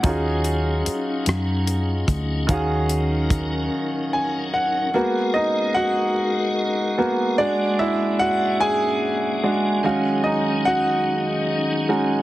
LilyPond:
<<
  \new Staff \with { instrumentName = "Grand piano" } { \time 6/8 \key dis \minor \tempo 4. = 49 << { r2. | r2 gis''8 fis''8 | r8 <dis' dis''>8 <fis' fis''>2 | d''8 <e' e''>8 <fis' fis''>8 <gis' gis''>4 r8 |
r8 <dis' dis''>8 <fis' fis''>2 | } \\ { <cis' dis' eis' fis' gis'>2. | <dis cis' fis' gis' eis''>2. | <ais b fis'>4. r4 <ais b fis'>8 | <gis d' fis'>2~ <gis d' fis'>8 <gis d' fis'>8 |
<gis cis' fis' eis''>2~ <gis cis' fis' eis''>8 <gis cis' dis' fis'>8 | } >> }
  \new Staff \with { instrumentName = "Tonewheel organ" } { \time 6/8 \key dis \minor << { gis'2. | ais'2. | <fis' gis'>2. | d'2. |
<dis' gis'>2. | } \\ { <cis' dis'>2.~ | <cis' dis'>2. | gis2.~ | gis2. |
<dis cis'>2. | } >> }
  \new Staff \with { instrumentName = "Tonewheel organ" } { \clef bass \time 6/8 \key dis \minor fis2.~ | fis2. | ais'2. | ais2. |
fis2. | }
  \new Staff \with { instrumentName = "Fingered electric bass" } { \clef bass \time 6/8 \key dis \minor dis,4 r8 fis,4 d,8 | dis,4. r4. | r2. | r2. |
r2. | }
  \new DrumStaff \with { instrumentName = "Drums" } \drummode { \time 6/8 <hh bd>8 hh8 hh8 <hh ss>8 hh8 <hh bd>8 | <hh bd>8 hh8 <hh bd>8 r4. | r4. r4. | r4. r4. |
r4. r4. | }
>>